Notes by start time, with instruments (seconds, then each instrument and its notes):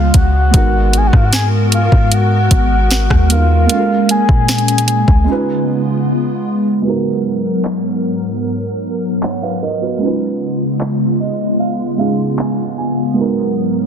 Already playing: 808-style bass C#2, analog synth pad C#3 F3 G#3 B3, felt piano F3 G#3 C#4 D#4 B4, soft synth lead F5
0.14 808-style bass C#2, soft synth lead F#5, kick, closed hi-hat
0.51 808-style bass G#1, felt piano G#3 B3 D#4, analog synth pad B3 F#4 A#4, kick, closed hi-hat
0.56 felt piano F#4 A#4
0.93 closed hi-hat
0.97 soft synth lead G#5
1.07 soft synth lead F#5
1.13 808-style bass G#2, soft synth lead F5, kick, cross-stick
1.25 soft synth lead F#5
1.33 soft synth lead G#5, snare, closed hi-hat
1.72 soft synth lead F5, closed hi-hat
1.92 808-style bass G#2, kick
2.12 soft synth lead F#5, closed hi-hat
2.51 808-style bass G#1, kick, closed hi-hat
2.91 snare, closed hi-hat
3.10 808-style bass D#2, kick, cross-stick
3.29 felt piano G#3 B3 D#4 F#4 A#4, soft synth lead F5, closed hi-hat
3.66 felt piano G#3 A#3 C#4, analog synth pad A#3 C#4, closed hi-hat
3.72 felt piano F4 A4
3.80 felt piano A#4
4.09 soft synth lead G#5, closed hi-hat
4.29 808-style bass A#2, kick
4.48 snare, closed hi-hat
4.58 closed hi-hat
4.68 closed hi-hat
4.78 closed hi-hat
4.88 closed hi-hat
5.08 808-style bass C#2, kick
5.24 analog synth pad C#3 B3 F4, felt piano G#3 C#4 D#4
5.30 felt piano F4 B4
6.82 analog synth pad G#2 F#3 B3 A#4, felt piano G#3 B3 D#4
6.88 felt piano F#4 A#4
7.65 clap
9.23 felt piano C#5 F#5, clap
9.42 felt piano B4 F5
9.62 felt piano A#4 D#5
9.82 felt piano F#4 B4
9.98 analog synth pad C#3 G#3 F4, felt piano G#3 C#4 D#4
10.04 felt piano F4 B4
10.81 clap
11.20 felt piano D#5
11.59 felt piano F5
11.97 felt piano G#3 C#4 D#4 F4 G#4 F5
12.38 felt piano G#5, clap
12.78 felt piano G#5
13.13 analog synth pad G#2 F#3 A#4, felt piano G#3 B3 D#4
13.19 felt piano F#4 A#4